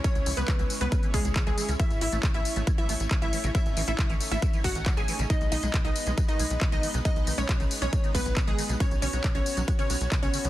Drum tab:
HH |xxoxxxoxxxoxxxox|xxoxxxoxxxoxxxox|xxoxxxoxxxoxxxox|xxoxxxoxxxoxxxox|
TB |xxxxxxxxxxxxxxxx|xxxxxxxxxxxxxxxx|xxxxxxxxxxxxxxxx|xxxxxxxxxxxxxxxx|
CP |----x-------x---|----x-------x---|----x-------x---|----x-------x---|
BD |o---o---o-o-o---|o---o---o---o---|o---o---o-o-o---|o---o---o---o---|

HH |xxoxxxoxxxoxxxox|xxoxxxoxxxoxxxox|
TB |xxxxxxxxxxxxxxxx|xxxxxxxxxxxxxxxx|
CP |----x-------x---|----x-------x---|
BD |o---o---o-o-o---|o---o---o---o---|